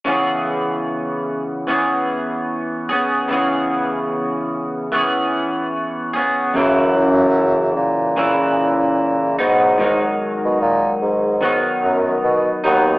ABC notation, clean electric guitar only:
X:1
M:4/4
L:1/8
Q:"Swing 16ths" 1/4=74
K:C#dor
V:1 name="Clean electric guitar"
[C,E,B,CG]4 [E,B,CG]3 [B,CG] | [C,E,B,CG]4 [E,B,CG]3 [B,CG] | [F,,C,E,E]4 [C,E,E]3 [F,B,D] | [G,,D,F,D]4 [D,F,B,D]3 [F,B,D] |]